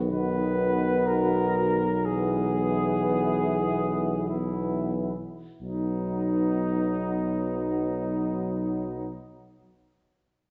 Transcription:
0.00 5.12 B1 soft
0.10 1.71 D#3 soft
0.10 1.89 B3 soft
0.10 2.01 F#4 soft
0.10 1.08 B4 medium
1.07 2.07 A#4 medium
2.05 4.26 E3 soft
2.05 4.26 B3 soft
2.05 4.27 E4 soft
2.05 4.28 G#4 medium
4.28 5.15 E3 soft
4.28 5.15 B3 soft
4.28 5.14 E4 soft
4.28 4.94 E4 soft
5.61 9.06 B1 soft
5.61 9.09 F#3 soft
5.61 9.08 B3 soft
5.61 9.07 D#4 soft

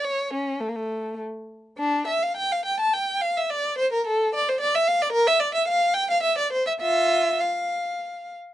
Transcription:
0.04 0.33 C#5 medium
0.33 0.61 C#4 medium
0.60 0.68 A3 medium
0.68 0.76 A#3 soft
0.75 1.18 A3 medium
1.77 2.07 D4 medium
2.07 2.22 E5 medium
2.22 2.37 F5 medium
2.36 2.51 G5 medium
2.52 2.66 F5 medium
2.65 2.79 G5 medium
2.80 2.93 A5 medium
2.93 3.21 G5 medium
3.21 3.35 F5 medium
3.37 3.50 E5 medium
3.50 3.77 D5 medium
3.78 3.91 C5 medium
3.92 4.05 A#4 medium
4.07 4.32 A4 medium
4.34 4.46 D5 medium
4.48 4.60 C5 medium
4.60 4.73 D5 medium
4.75 4.87 E5 medium
4.87 5.00 F5 medium
5.02 5.14 D5 medium
5.12 5.25 A#4 loud
5.27 5.40 E5 loud
5.40 5.53 D5 medium
5.54 5.67 E5 medium
5.68 5.94 F5 medium
5.94 6.07 G5 loud
6.10 6.23 F5 medium
6.23 6.36 E5 medium
6.38 6.51 D5 medium
6.52 6.66 C5 medium
6.67 6.72 E5 medium
6.81 7.36 F4 medium
6.81 7.39 E5 medium
7.40 8.30 F5 medium

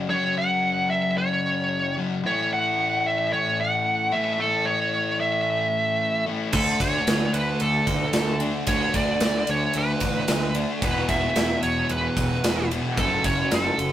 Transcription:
0.09 1.96 F#2 loud
0.09 1.96 C#3 loud
0.09 1.96 F#3 loud
0.09 0.37 C#5 medium
0.38 0.87 F#5 loud
0.90 1.17 E5 loud
1.18 1.94 C#5 medium
1.97 2.24 F#2 medium
1.97 2.23 C#3 medium
1.97 2.22 F#3 medium
2.24 4.10 A2 medium
2.24 4.12 E3 medium
2.24 4.11 A3 loud
2.24 2.50 C#5 loud
2.53 3.07 F#5 loud
3.06 3.33 E5 medium
3.33 3.60 C#5 loud
3.60 4.15 F#5 loud
4.12 4.37 A2 medium
4.12 4.38 E3 medium
4.12 4.41 A3 medium
4.12 4.40 E5 loud
4.39 6.25 A2 medium
4.39 6.26 E3 medium
4.39 6.26 A3 loud
4.39 4.67 A4 medium
4.65 5.20 C#5 loud
5.20 6.23 E5 medium
6.26 6.52 A2 medium
6.26 6.53 E3 medium
6.26 6.54 A3 medium
6.53 6.71 D2 medium
6.53 8.39 D3 loud
6.53 8.40 A3 loud
6.53 8.39 D4 loud
6.53 6.78 A4 medium
6.53 kick loud
6.53 crash loud
6.80 6.98 D2 loud
6.80 7.36 C#5 loud
6.80 kick medium
6.80 ride medium
7.07 7.25 D2 loud
7.07 snare loud
7.07 ride loud
7.33 7.51 D2 loud
7.33 7.61 B4 loud
7.33 ride medium
7.60 7.79 D2 loud
7.60 8.38 A4 medium
7.60 ride loud
7.87 8.05 D2 medium
7.87 kick medium
7.87 ride medium
8.13 8.49 D2 loud
8.13 snare loud
8.13 ride loud
8.40 8.66 D3 medium
8.40 8.67 A3 medium
8.40 8.66 D4 medium
8.40 ride medium
8.67 8.85 D2 medium
8.67 10.53 D3 medium
8.67 10.54 A3 loud
8.67 10.53 D4 loud
8.67 8.96 C#5 loud
8.67 kick loud
8.67 ride loud
8.94 9.12 D2 loud
8.94 9.50 D5 loud
8.94 kick medium
8.94 ride medium
9.20 9.39 D2 medium
9.20 snare loud
9.20 ride loud
9.47 9.66 D2 loud
9.47 9.77 C#5 medium
9.47 ride medium
9.73 9.93 D2 loud
9.73 10.53 B4 medium
9.73 ride loud
10.00 10.19 A1 medium
10.00 kick medium
10.00 ride medium
10.28 10.64 D2 loud
10.28 snare loud
10.28 ride loud
10.54 10.82 D3 medium
10.54 10.81 A3 medium
10.54 10.80 D4 loud
10.54 ride medium
10.82 10.99 E1 medium
10.82 12.69 E2 loud
10.82 12.70 B2 loud
10.82 12.70 E3 loud
10.82 11.11 B4 loud
10.82 kick loud
10.82 ride loud
11.08 11.26 E1 loud
11.08 11.59 E5 loud
11.08 kick medium
11.08 ride medium
11.36 11.54 E1 medium
11.36 snare loud
11.36 ride loud
11.63 11.81 E1 loud
11.63 11.91 C#5 loud
11.63 ride medium
11.89 12.07 E1 loud
11.89 12.67 B4 medium
11.89 ride loud
12.17 12.34 E1 medium
12.17 kick medium
12.17 ride medium
12.44 12.79 E1 loud
12.44 snare loud
12.44 ride loud
12.71 12.97 E2 medium
12.71 12.97 B2 medium
12.71 12.96 E3 medium
12.71 ride medium
12.97 13.15 F#1 medium
12.97 13.92 F#2 loud
12.97 13.92 C#3 loud
12.97 13.26 A4 medium
12.97 kick loud
12.97 ride loud
13.01 13.92 F#3 loud
13.24 13.42 F#1 loud
13.24 13.53 C#5 loud
13.24 kick loud
13.24 ride medium
13.51 13.69 F#1 loud
13.51 13.92 A4 loud
13.51 snare loud
13.51 ride loud
13.78 13.92 F#1 loud
13.78 ride medium

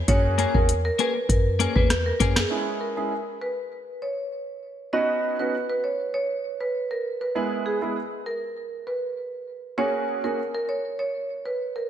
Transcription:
0.08 0.46 F#2 loud
0.08 0.51 A#3 medium
0.08 0.51 C#4 medium
0.08 0.51 F#4 medium
0.08 0.51 G#4 loud
0.08 0.20 C#5 loud
0.08 kick loud
0.08 closed hi-hat medium
0.38 0.57 A#3 medium
0.38 0.57 C#4 medium
0.38 0.58 G#4 loud
0.38 closed hi-hat medium
0.54 0.91 E2 medium
0.54 0.69 A#3 medium
0.54 0.69 C#4 medium
0.54 0.69 F#4 medium
0.54 0.69 G#4 medium
0.54 0.65 A#4 medium
0.54 kick loud
0.69 closed hi-hat medium
0.85 0.95 A#4 medium
0.99 1.17 A#3 medium
0.99 1.15 C#4 medium
0.99 1.14 G#4 loud
0.99 1.11 B4 medium
0.99 closed hi-hat medium
1.15 muted clean electric guitar stroke soft
1.29 1.67 F#2 medium
1.29 1.41 A#4 medium
1.29 kick loud
1.29 closed hi-hat medium
1.59 1.76 A#3 medium
1.59 1.75 C#4 medium
1.59 1.74 G#4 medium
1.59 closed hi-hat medium
1.75 2.12 E2 medium
1.75 1.89 A#3 medium
1.75 1.89 C#4 medium
1.75 1.89 G#4 medium
1.75 1.86 B4 medium
1.75 kick loud
1.90 cross-stick medium
1.90 snare medium
1.90 closed hi-hat medium
2.06 2.16 A#4 medium
2.20 2.45 F#2 medium
2.20 2.39 A#3 medium
2.20 2.39 C#4 loud
2.20 2.39 G#4 loud
2.20 kick medium
2.20 closed hi-hat medium
2.36 2.46 G#4 medium
2.36 cross-stick medium
2.36 snare loud
2.50 2.93 G#3 medium
2.50 2.93 C#4 medium
2.50 2.93 E4 medium
2.50 2.93 G#4 medium
2.81 2.92 A#4 medium
2.97 3.11 G#3 medium
2.97 3.11 C#4 medium
2.97 3.11 E4 medium
2.97 3.11 G#4 medium
3.42 3.53 B4 medium
4.02 4.14 C#5 medium
4.93 5.35 B3 medium
4.93 5.36 C#4 medium
4.93 5.36 D#4 medium
4.93 5.36 F#4 medium
4.93 5.04 D#5 medium
5.39 5.54 B3 medium
5.39 5.54 C#4 medium
5.39 5.54 D#4 medium
5.39 5.54 F#4 medium
5.39 5.50 B4 medium
5.70 5.80 B4 medium
5.84 5.95 C#5 medium
6.14 6.26 C#5 medium
6.61 6.71 B4 medium
6.91 7.01 A#4 medium
7.21 7.31 B4 medium
7.35 7.78 G#3 medium
7.35 7.78 B3 medium
7.35 7.78 E4 medium
7.35 7.78 G#4 medium
7.66 7.77 G#4 medium
7.82 7.96 G#3 medium
7.82 7.96 B3 medium
7.82 7.96 E4 medium
7.82 7.96 G#4 medium
8.26 8.38 A#4 medium
8.87 8.99 B4 medium
9.78 10.20 A#3 medium
9.78 10.20 C#4 medium
9.78 10.20 F#4 medium
9.78 10.21 G#4 medium
9.78 9.89 C#5 medium
10.24 10.38 A#3 medium
10.24 10.38 C#4 medium
10.24 10.38 F#4 medium
10.24 10.39 G#4 medium
10.24 10.34 A#4 medium
10.54 10.65 A#4 medium
10.69 10.80 C#5 medium
10.99 11.11 C#5 medium
11.46 11.56 B4 medium
11.76 11.86 A#4 medium

